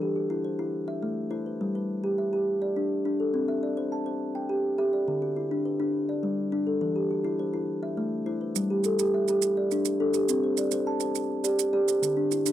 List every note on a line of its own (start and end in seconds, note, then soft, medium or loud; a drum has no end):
0.00 0.15 E3 medium
0.00 0.45 G4 medium
0.16 0.59 F#4 medium
0.30 0.58 E4 medium
0.44 0.88 C5 medium
0.59 0.74 E4 medium
0.88 1.31 E5 medium
1.03 1.32 A3 medium
1.31 1.60 E4 medium
1.31 1.75 C5 medium
1.46 1.74 B4 soft
1.61 1.90 G3 medium
1.75 2.19 B4 medium
2.04 2.32 G4 medium
2.18 2.62 E5 medium
2.33 2.62 G4 medium
2.62 3.05 D5 medium
2.76 3.04 D4 medium
3.05 3.34 D4 medium
3.20 3.49 A4 medium
3.34 3.63 C4 medium
3.48 3.92 E5 medium
3.63 4.06 D5 medium
3.77 4.05 C5 medium
3.92 4.35 A5 medium
4.06 4.35 C5 medium
4.35 4.79 G5 medium
4.49 4.77 G4 medium
4.78 5.08 G4 medium
4.78 5.22 E5 medium
4.93 5.22 D5 medium
5.08 5.37 D3 medium
5.22 5.66 F#4 medium
5.36 5.80 E4 medium
5.51 5.78 D4 medium
5.65 6.09 B4 medium
5.80 5.94 D4 medium
6.09 6.53 D5 medium
6.23 6.52 G3 medium
6.52 6.81 D4 medium
6.67 6.96 A4 medium
6.81 7.10 E3 medium
6.96 7.39 G4 medium
7.11 7.54 F#4 medium
7.25 7.52 E4 medium
7.39 7.83 C5 medium
7.54 7.68 E4 medium
7.83 8.26 E5 medium
7.97 8.26 A3 medium
8.26 8.55 E4 medium
8.26 8.70 C5 medium
8.41 8.70 B4 medium
8.56 8.84 G3 medium
8.56 maracas medium
8.70 8.98 G4 medium
8.84 9.28 A4 medium
8.84 maracas medium
8.99 9.28 G4 medium
8.99 maracas medium
9.14 9.57 E5 medium
9.28 9.57 G4 medium
9.28 maracas medium
9.42 maracas medium
9.57 10.00 D5 medium
9.71 9.99 D4 medium
9.71 maracas medium
9.85 maracas medium
10.00 10.29 D4 medium
10.00 10.44 A4 medium
10.14 10.43 G4 medium
10.14 maracas medium
10.29 10.58 C4 medium
10.29 maracas medium
10.44 10.71 C5 medium
10.57 11.01 D5 medium
10.57 maracas medium
10.71 10.99 C5 medium
10.71 maracas medium
10.87 11.30 A5 medium
11.00 11.30 C5 medium
11.00 maracas medium
11.15 maracas medium
11.44 11.72 G4 medium
11.44 11.72 D5 medium
11.44 maracas medium
11.59 maracas medium
11.73 12.02 G4 medium
11.73 12.17 D5 medium
11.88 12.17 C5 medium
11.88 maracas medium
12.02 12.31 D3 medium
12.02 maracas medium
12.17 12.45 D4 medium
12.31 12.52 E4 medium
12.31 maracas medium
12.46 12.52 D4 medium
12.46 maracas medium